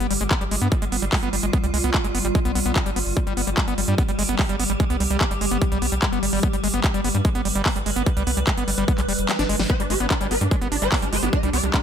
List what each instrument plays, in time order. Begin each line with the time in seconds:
Already playing: synth drone G3 F4
0.00 analog synth bass G1, acid bass B3, closed hi-hat
0.11 analog synth bass G1, acid bass G3, open hi-hat
0.21 analog synth bass G1, acid bass G#3, closed hi-hat
0.31 acid bass B3, kick, clap, closed hi-hat
0.41 analog synth bass G1, acid bass G3, closed hi-hat
0.51 analog synth bass G1, acid bass G#3, open hi-hat
0.62 analog synth bass G2, acid bass B3, closed hi-hat
0.72 acid bass G3, kick, closed hi-hat
0.82 analog synth bass G1, acid bass G#3, closed hi-hat
0.92 analog synth bass G1, acid bass B3, open hi-hat
1.02 analog synth bass G1, acid bass G3, closed hi-hat
1.13 acid bass G#3, kick, clap, open hi-hat
1.23 analog synth bass G1, acid bass B3, closed hi-hat
1.33 analog synth bass G1, acid bass G3, open hi-hat
1.43 analog synth bass G1, acid bass G#3, closed hi-hat
1.53 acid bass B3, kick, closed hi-hat
1.64 analog synth bass C2, acid bass G3, closed hi-hat
1.74 analog synth bass C2, acid bass G#3, open hi-hat
1.84 analog synth bass C2, acid bass B3, closed hi-hat
1.94 acid bass G3, kick, clap, closed hi-hat
2.04 analog synth bass G1, acid bass G#3, closed hi-hat
2.15 analog synth bass G1, acid bass B3, open hi-hat
2.25 analog synth bass G1, acid bass G3, closed hi-hat
2.35 acid bass G#3, kick, closed hi-hat
2.45 analog synth bass B1, acid bass B3, closed hi-hat
2.55 analog synth bass B1, acid bass B3, open hi-hat
2.66 analog synth bass B1, acid bass B3, closed hi-hat
2.76 acid bass D4, kick, clap, closed hi-hat
2.86 analog synth bass G1, acid bass G3, closed hi-hat
2.96 analog synth bass G1, acid bass B3, open hi-hat
3.06 analog synth bass G1, open hi-hat
3.17 acid bass G3, synth drone G4, kick
3.27 analog synth bass G1, acid bass G3, closed hi-hat
3.37 analog synth bass G1, acid bass B3, open hi-hat
3.47 analog synth bass G1, acid bass G3, closed hi-hat
3.57 acid bass G#3, kick, clap, closed hi-hat
3.68 analog synth bass G1, acid bass B3, closed hi-hat
3.78 analog synth bass G1, acid bass G3, open hi-hat
3.88 analog synth bass G2, acid bass G3, closed hi-hat
3.98 acid bass B3, kick, closed hi-hat
4.08 analog synth bass G1, acid bass G3, closed hi-hat
4.19 analog synth bass G1, acid bass G#3, open hi-hat
4.29 analog synth bass G1, acid bass B3, closed hi-hat
4.39 acid bass G3, kick, clap, open hi-hat
4.49 analog synth bass G1, acid bass G3, closed hi-hat
4.60 analog synth bass G1, acid bass B3, open hi-hat
4.70 analog synth bass G1, acid bass G3, closed hi-hat
4.80 acid bass G#3, kick, closed hi-hat
4.90 analog synth bass C2, acid bass B3, closed hi-hat
5.00 analog synth bass C2, acid bass G3, open hi-hat
5.11 analog synth bass C2, acid bass G3, closed hi-hat
5.21 acid bass B3, kick, clap, closed hi-hat
5.31 analog synth bass G1, acid bass G3, closed hi-hat
5.41 analog synth bass G1, acid bass G#3, open hi-hat
5.51 analog synth bass G1, acid bass B3, closed hi-hat
5.62 acid bass G3, kick, closed hi-hat
5.72 analog synth bass B1, acid bass G3, closed hi-hat
5.82 analog synth bass B1, acid bass B3, open hi-hat
5.92 analog synth bass B1, acid bass G3, closed hi-hat
6.02 acid bass G#3, kick, clap, closed hi-hat
6.13 analog synth bass G1, acid bass B3, closed hi-hat
6.23 analog synth bass G1, acid bass G3, open hi-hat
6.33 analog synth bass G1, acid bass G3, open hi-hat
6.43 acid bass B3, synth drone B4, kick, closed hi-hat
6.53 analog synth bass G1, acid bass G3, closed hi-hat
6.64 analog synth bass G1, acid bass G#3, open hi-hat
6.74 analog synth bass G1, acid bass B3, closed hi-hat
6.84 acid bass G3, kick, clap, closed hi-hat
6.94 analog synth bass G1, acid bass G3, closed hi-hat
7.04 analog synth bass G1, acid bass B3, open hi-hat
7.15 analog synth bass G2, acid bass G3, closed hi-hat
7.25 acid bass G#3, kick, closed hi-hat
7.35 analog synth bass G1, acid bass B3, closed hi-hat
7.45 analog synth bass G1, acid bass G3, open hi-hat
7.55 analog synth bass G1, acid bass G3, closed hi-hat
7.66 acid bass B3, kick, clap, open hi-hat
7.76 analog synth bass G1, acid bass G3, closed hi-hat
7.86 analog synth bass G1, acid bass G#3, open hi-hat
7.96 analog synth bass G1, acid bass B3, closed hi-hat
8.06 acid bass G3, kick, closed hi-hat
8.17 analog synth bass C2, acid bass G3, closed hi-hat
8.27 analog synth bass C2, acid bass B3, open hi-hat
8.37 analog synth bass C2, acid bass G3, closed hi-hat
8.47 acid bass G#3, kick, clap, closed hi-hat
8.57 analog synth bass G1, acid bass B3, closed hi-hat
8.68 analog synth bass G1, acid bass G3, open hi-hat
8.78 analog synth bass G1, acid bass G3, closed hi-hat
8.88 acid bass B3, kick, closed hi-hat
8.98 analog synth bass B1, acid bass G3, clap, closed hi-hat
9.08 analog synth bass F1, acid bass G3, open hi-hat
9.19 analog synth bass F1, closed hi-hat
9.29 acid bass G3, snare, clap, closed hi-hat
9.39 analog synth bass G1, acid bass D4, snare, closed hi-hat
9.49 analog synth bass G1, acid bass G#3, open hi-hat
9.59 analog synth bass G1, acid bass G3, snare
9.70 synth drone G3 G4, acid bass B3, digital synth lead C5, kick
9.80 analog synth bass G1, acid bass G3, digital synth lead D4, closed hi-hat
9.90 analog synth bass G1, acid bass G#3, digital synth lead G4, open hi-hat
10.00 analog synth bass G1, acid bass B3, digital synth lead D4, closed hi-hat
10.11 acid bass D4, digital synth lead D4, kick, clap, closed hi-hat
10.21 analog synth bass G1, acid bass G3, digital synth lead D4, closed hi-hat
10.31 analog synth bass G1, acid bass B3, digital synth lead B4, open hi-hat
10.41 analog synth bass G2, acid bass G3, digital synth lead D4, closed hi-hat
10.51 acid bass G#3, digital synth lead D4, kick, closed hi-hat
10.62 analog synth bass G1, acid bass B3, closed hi-hat
10.72 analog synth bass G1, acid bass D4, digital synth lead D4, open hi-hat
10.82 analog synth bass G1, acid bass G3, digital synth lead C5, closed hi-hat
10.92 acid bass B3, digital synth lead D4, kick, clap, open hi-hat
11.02 analog synth bass G1, acid bass G3, digital synth lead D4, closed hi-hat
11.13 analog synth bass G1, acid bass G#3, digital synth lead C5, open hi-hat
11.23 analog synth bass G1, acid bass B3, digital synth lead D4, closed hi-hat
11.33 acid bass D4, digital synth lead D#5, kick, closed hi-hat
11.43 analog synth bass C2, acid bass G3, digital synth lead D4, closed hi-hat
11.53 analog synth bass C2, acid bass B3, digital synth lead D5, open hi-hat
11.64 analog synth bass C2, acid bass G3, digital synth lead D4, closed hi-hat
11.74 acid bass G#3, digital synth lead D4, kick, clap, closed hi-hat